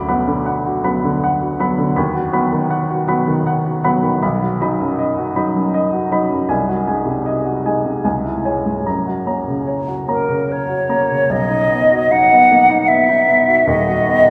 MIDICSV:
0, 0, Header, 1, 3, 480
1, 0, Start_track
1, 0, Key_signature, 5, "major"
1, 0, Tempo, 756620
1, 1242, Time_signature, 3, 2, 24, 8
1, 4608, Tempo, 808625
1, 7488, Tempo, 783290
1, 8827, End_track
2, 0, Start_track
2, 0, Title_t, "Flute"
2, 0, Program_c, 0, 73
2, 6292, Note_on_c, 0, 70, 56
2, 6540, Note_on_c, 0, 73, 62
2, 6549, Note_off_c, 0, 70, 0
2, 7014, Note_on_c, 0, 75, 82
2, 7023, Note_off_c, 0, 73, 0
2, 7487, Note_on_c, 0, 78, 86
2, 7496, Note_off_c, 0, 75, 0
2, 7956, Note_on_c, 0, 76, 76
2, 7966, Note_off_c, 0, 78, 0
2, 8447, Note_on_c, 0, 75, 86
2, 8456, Note_off_c, 0, 76, 0
2, 8827, Note_off_c, 0, 75, 0
2, 8827, End_track
3, 0, Start_track
3, 0, Title_t, "Grand piano"
3, 0, Program_c, 1, 0
3, 0, Control_c, 1, 64, 127
3, 0, Note_on_c, 1, 38, 57
3, 0, Note_on_c, 1, 66, 49
3, 0, Note_on_c, 1, 83, 58
3, 54, Note_off_c, 1, 83, 0
3, 54, Note_on_c, 1, 59, 42
3, 54, Note_on_c, 1, 83, 49
3, 55, Note_on_c, 1, 54, 42
3, 55, Note_on_c, 1, 78, 45
3, 120, Note_off_c, 1, 66, 0
3, 157, Note_off_c, 1, 83, 0
3, 158, Note_off_c, 1, 78, 0
3, 173, Note_on_c, 1, 50, 51
3, 291, Note_on_c, 1, 78, 50
3, 362, Note_off_c, 1, 50, 0
3, 418, Note_on_c, 1, 66, 47
3, 482, Note_off_c, 1, 78, 0
3, 506, Note_off_c, 1, 59, 0
3, 507, Note_off_c, 1, 54, 0
3, 533, Note_on_c, 1, 54, 42
3, 533, Note_on_c, 1, 78, 48
3, 535, Note_on_c, 1, 83, 50
3, 536, Note_on_c, 1, 59, 47
3, 606, Note_off_c, 1, 66, 0
3, 639, Note_off_c, 1, 78, 0
3, 641, Note_off_c, 1, 83, 0
3, 660, Note_on_c, 1, 50, 53
3, 784, Note_on_c, 1, 78, 54
3, 845, Note_off_c, 1, 50, 0
3, 895, Note_on_c, 1, 66, 47
3, 965, Note_off_c, 1, 78, 0
3, 982, Note_off_c, 1, 54, 0
3, 983, Note_off_c, 1, 59, 0
3, 1012, Note_on_c, 1, 78, 50
3, 1014, Note_on_c, 1, 54, 49
3, 1016, Note_on_c, 1, 59, 46
3, 1018, Note_on_c, 1, 83, 53
3, 1080, Note_off_c, 1, 66, 0
3, 1115, Note_off_c, 1, 78, 0
3, 1118, Note_off_c, 1, 83, 0
3, 1129, Note_on_c, 1, 50, 52
3, 1223, Note_off_c, 1, 54, 0
3, 1224, Note_off_c, 1, 59, 0
3, 1244, Note_on_c, 1, 83, 54
3, 1245, Note_off_c, 1, 50, 0
3, 1246, Note_on_c, 1, 39, 60
3, 1253, Control_c, 1, 64, 0
3, 1254, Note_off_c, 1, 38, 0
3, 1358, Control_c, 1, 64, 127
3, 1360, Note_on_c, 1, 66, 53
3, 1433, Note_off_c, 1, 83, 0
3, 1474, Note_off_c, 1, 39, 0
3, 1477, Note_on_c, 1, 54, 43
3, 1478, Note_on_c, 1, 78, 46
3, 1479, Note_on_c, 1, 59, 45
3, 1481, Note_on_c, 1, 83, 52
3, 1551, Note_off_c, 1, 66, 0
3, 1586, Note_off_c, 1, 78, 0
3, 1588, Note_off_c, 1, 83, 0
3, 1597, Note_on_c, 1, 51, 49
3, 1715, Note_on_c, 1, 78, 53
3, 1790, Note_off_c, 1, 51, 0
3, 1839, Note_on_c, 1, 66, 51
3, 1910, Note_off_c, 1, 78, 0
3, 1934, Note_off_c, 1, 54, 0
3, 1935, Note_off_c, 1, 59, 0
3, 1952, Note_on_c, 1, 78, 50
3, 1953, Note_on_c, 1, 54, 47
3, 1956, Note_on_c, 1, 59, 50
3, 1957, Note_on_c, 1, 83, 55
3, 2032, Note_off_c, 1, 66, 0
3, 2064, Note_off_c, 1, 78, 0
3, 2067, Note_off_c, 1, 83, 0
3, 2076, Note_on_c, 1, 51, 53
3, 2198, Note_on_c, 1, 78, 57
3, 2270, Note_off_c, 1, 51, 0
3, 2315, Note_on_c, 1, 66, 50
3, 2391, Note_off_c, 1, 78, 0
3, 2411, Note_off_c, 1, 54, 0
3, 2413, Note_off_c, 1, 59, 0
3, 2437, Note_on_c, 1, 78, 51
3, 2439, Note_on_c, 1, 54, 47
3, 2439, Note_on_c, 1, 59, 49
3, 2439, Note_on_c, 1, 83, 56
3, 2510, Note_off_c, 1, 66, 0
3, 2547, Note_off_c, 1, 78, 0
3, 2548, Note_off_c, 1, 83, 0
3, 2554, Note_on_c, 1, 51, 49
3, 2657, Note_off_c, 1, 54, 0
3, 2657, Note_off_c, 1, 59, 0
3, 2678, Note_off_c, 1, 51, 0
3, 2680, Note_on_c, 1, 83, 53
3, 2681, Note_on_c, 1, 35, 64
3, 2692, Control_c, 1, 64, 0
3, 2793, Control_c, 1, 64, 127
3, 2804, Note_on_c, 1, 66, 48
3, 2874, Note_off_c, 1, 83, 0
3, 2915, Note_off_c, 1, 35, 0
3, 2925, Note_on_c, 1, 54, 42
3, 2925, Note_on_c, 1, 75, 46
3, 2930, Note_on_c, 1, 63, 42
3, 2930, Note_on_c, 1, 83, 47
3, 2996, Note_off_c, 1, 66, 0
3, 3032, Note_off_c, 1, 75, 0
3, 3035, Note_off_c, 1, 83, 0
3, 3045, Note_on_c, 1, 42, 54
3, 3164, Note_on_c, 1, 75, 50
3, 3237, Note_off_c, 1, 42, 0
3, 3281, Note_on_c, 1, 66, 49
3, 3356, Note_off_c, 1, 75, 0
3, 3380, Note_off_c, 1, 54, 0
3, 3382, Note_off_c, 1, 63, 0
3, 3399, Note_on_c, 1, 54, 41
3, 3399, Note_on_c, 1, 75, 46
3, 3401, Note_on_c, 1, 83, 50
3, 3402, Note_on_c, 1, 63, 44
3, 3475, Note_off_c, 1, 66, 0
3, 3510, Note_off_c, 1, 75, 0
3, 3511, Note_off_c, 1, 83, 0
3, 3521, Note_on_c, 1, 42, 50
3, 3641, Note_on_c, 1, 75, 54
3, 3715, Note_off_c, 1, 42, 0
3, 3758, Note_on_c, 1, 66, 45
3, 3834, Note_off_c, 1, 75, 0
3, 3856, Note_off_c, 1, 54, 0
3, 3857, Note_off_c, 1, 63, 0
3, 3879, Note_on_c, 1, 54, 43
3, 3880, Note_on_c, 1, 75, 47
3, 3881, Note_on_c, 1, 63, 43
3, 3884, Note_on_c, 1, 83, 52
3, 3951, Note_off_c, 1, 66, 0
3, 3989, Note_off_c, 1, 75, 0
3, 3991, Note_off_c, 1, 83, 0
3, 3999, Note_on_c, 1, 42, 46
3, 4095, Note_off_c, 1, 54, 0
3, 4097, Note_off_c, 1, 63, 0
3, 4116, Note_on_c, 1, 36, 56
3, 4116, Note_on_c, 1, 80, 52
3, 4120, Note_off_c, 1, 42, 0
3, 4132, Control_c, 1, 64, 0
3, 4236, Control_c, 1, 64, 127
3, 4239, Note_on_c, 1, 66, 48
3, 4311, Note_off_c, 1, 80, 0
3, 4352, Note_off_c, 1, 36, 0
3, 4359, Note_on_c, 1, 75, 39
3, 4361, Note_on_c, 1, 56, 36
3, 4361, Note_on_c, 1, 80, 42
3, 4362, Note_on_c, 1, 63, 38
3, 4434, Note_off_c, 1, 66, 0
3, 4470, Note_off_c, 1, 75, 0
3, 4471, Note_off_c, 1, 80, 0
3, 4474, Note_on_c, 1, 48, 46
3, 4605, Note_on_c, 1, 75, 48
3, 4671, Note_off_c, 1, 48, 0
3, 4719, Note_on_c, 1, 66, 43
3, 4792, Note_off_c, 1, 75, 0
3, 4815, Note_off_c, 1, 56, 0
3, 4815, Note_off_c, 1, 63, 0
3, 4839, Note_on_c, 1, 56, 41
3, 4840, Note_on_c, 1, 75, 37
3, 4842, Note_on_c, 1, 63, 38
3, 4842, Note_on_c, 1, 80, 44
3, 4907, Note_off_c, 1, 66, 0
3, 4945, Note_off_c, 1, 75, 0
3, 4946, Note_off_c, 1, 80, 0
3, 4953, Note_on_c, 1, 48, 41
3, 5051, Note_off_c, 1, 56, 0
3, 5053, Note_off_c, 1, 63, 0
3, 5073, Note_off_c, 1, 48, 0
3, 5073, Note_on_c, 1, 37, 49
3, 5073, Note_on_c, 1, 80, 42
3, 5084, Control_c, 1, 64, 0
3, 5189, Control_c, 1, 64, 127
3, 5194, Note_on_c, 1, 64, 38
3, 5264, Note_off_c, 1, 80, 0
3, 5305, Note_off_c, 1, 37, 0
3, 5312, Note_on_c, 1, 56, 39
3, 5312, Note_on_c, 1, 73, 41
3, 5314, Note_on_c, 1, 80, 41
3, 5315, Note_on_c, 1, 61, 37
3, 5386, Note_off_c, 1, 64, 0
3, 5421, Note_off_c, 1, 73, 0
3, 5422, Note_off_c, 1, 80, 0
3, 5436, Note_on_c, 1, 44, 39
3, 5532, Note_off_c, 1, 56, 0
3, 5533, Note_off_c, 1, 61, 0
3, 5557, Note_off_c, 1, 44, 0
3, 5558, Note_on_c, 1, 82, 42
3, 5559, Note_on_c, 1, 42, 46
3, 5567, Control_c, 1, 64, 0
3, 5679, Note_on_c, 1, 66, 38
3, 5683, Control_c, 1, 64, 127
3, 5753, Note_off_c, 1, 82, 0
3, 5795, Note_off_c, 1, 42, 0
3, 5796, Note_on_c, 1, 58, 30
3, 5796, Note_on_c, 1, 73, 34
3, 5799, Note_on_c, 1, 61, 32
3, 5799, Note_on_c, 1, 82, 37
3, 5875, Note_off_c, 1, 66, 0
3, 5909, Note_off_c, 1, 73, 0
3, 5910, Note_off_c, 1, 82, 0
3, 5920, Note_on_c, 1, 49, 41
3, 6037, Note_on_c, 1, 73, 42
3, 6117, Note_off_c, 1, 49, 0
3, 6160, Note_on_c, 1, 66, 36
3, 6237, Note_off_c, 1, 73, 0
3, 6264, Note_off_c, 1, 58, 0
3, 6265, Note_off_c, 1, 61, 0
3, 6280, Note_on_c, 1, 58, 34
3, 6280, Note_on_c, 1, 73, 35
3, 6283, Note_on_c, 1, 82, 39
3, 6284, Note_on_c, 1, 61, 33
3, 6359, Note_off_c, 1, 66, 0
3, 6394, Note_off_c, 1, 73, 0
3, 6395, Note_off_c, 1, 82, 0
3, 6401, Note_on_c, 1, 49, 39
3, 6522, Note_on_c, 1, 73, 39
3, 6599, Note_off_c, 1, 49, 0
3, 6637, Note_on_c, 1, 66, 37
3, 6719, Note_off_c, 1, 73, 0
3, 6744, Note_off_c, 1, 58, 0
3, 6745, Note_off_c, 1, 61, 0
3, 6761, Note_on_c, 1, 58, 33
3, 6761, Note_on_c, 1, 61, 36
3, 6762, Note_on_c, 1, 73, 36
3, 6764, Note_on_c, 1, 82, 38
3, 6837, Note_off_c, 1, 66, 0
3, 6875, Note_off_c, 1, 73, 0
3, 6876, Note_off_c, 1, 82, 0
3, 6882, Note_on_c, 1, 49, 35
3, 6982, Note_off_c, 1, 58, 0
3, 6982, Note_off_c, 1, 61, 0
3, 7004, Note_on_c, 1, 35, 54
3, 7006, Note_off_c, 1, 49, 0
3, 7022, Control_c, 1, 64, 0
3, 7123, Note_on_c, 1, 63, 42
3, 7143, Control_c, 1, 64, 127
3, 7245, Note_on_c, 1, 59, 40
3, 7319, Note_off_c, 1, 63, 0
3, 7368, Note_on_c, 1, 66, 45
3, 7439, Note_off_c, 1, 59, 0
3, 7489, Note_on_c, 1, 63, 41
3, 7559, Note_off_c, 1, 66, 0
3, 7614, Note_on_c, 1, 59, 42
3, 7680, Note_off_c, 1, 63, 0
3, 7731, Note_on_c, 1, 58, 39
3, 7800, Note_off_c, 1, 59, 0
3, 7846, Note_off_c, 1, 58, 0
3, 7847, Note_on_c, 1, 63, 42
3, 7962, Note_on_c, 1, 59, 45
3, 8035, Note_off_c, 1, 63, 0
3, 8085, Note_on_c, 1, 63, 40
3, 8152, Note_off_c, 1, 59, 0
3, 8201, Note_on_c, 1, 59, 44
3, 8274, Note_off_c, 1, 63, 0
3, 8321, Note_on_c, 1, 66, 41
3, 8393, Note_off_c, 1, 59, 0
3, 8413, Note_off_c, 1, 35, 0
3, 8436, Note_on_c, 1, 27, 52
3, 8441, Note_on_c, 1, 39, 56
3, 8442, Note_off_c, 1, 66, 0
3, 8451, Control_c, 1, 64, 0
3, 8558, Control_c, 1, 64, 127
3, 8562, Note_on_c, 1, 66, 46
3, 8687, Note_on_c, 1, 59, 38
3, 8758, Note_off_c, 1, 66, 0
3, 8827, Note_off_c, 1, 27, 0
3, 8827, Note_off_c, 1, 39, 0
3, 8827, Note_off_c, 1, 59, 0
3, 8827, End_track
0, 0, End_of_file